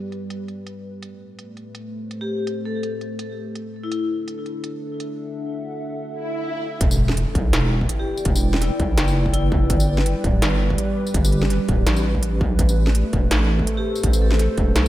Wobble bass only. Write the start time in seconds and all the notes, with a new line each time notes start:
6.81 E1
7.35 B1
7.53 E1
8.26 E1
8.80 B1
8.98 F#1
9.70 G1
10.24 D1
10.42 G1
11.14 G1
11.69 D1
11.86 A1
12.41 B1
12.59 A1
13.13 E1
13.32 A1
14.04 A1
14.58 E1
14.76 B1